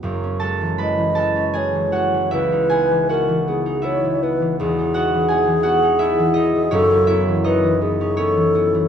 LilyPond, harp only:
<<
  \new Staff \with { instrumentName = "Harp" } { \time 3/4 \key fis \dorian \tempo 4 = 81 r8 <a' a''>8 <b' b''>8 <a' a''>8 <gis' gis''>8 <fis' fis''>8 | <e' e''>8 <gis' gis''>8 <fis' fis''>4 <e' e''>4~ | <e' e''>8 <fis' fis''>8 <gis' gis''>8 <fis' fis''>8 <e' e''>8 <dis' dis''>8 | <cis' cis''>8 <e' e''>8 <dis' dis''>4 <cis' cis''>4 | }
  \new Staff \with { instrumentName = "Harp" } { \clef bass \time 3/4 \key fis \dorian <fis,, fis, fis gis cis' e'>16 cis'16 gis16 e16 gis16 e16 gis16 cis'16 gis16 e16 gis16 e16 | cis,16 dis'16 b16 e16 b16 e16 b16 dis'16 b16 e16 b16 e16 | <e,, e,>16 dis'16 b16 e16 b16 e16 b16 dis'16 b16 e16 b16 e16 | <fis,, fis,>16 cis'16 b16 e16 b16 e16 b16 cis'16 b16 e16 b16 e16 | }
>>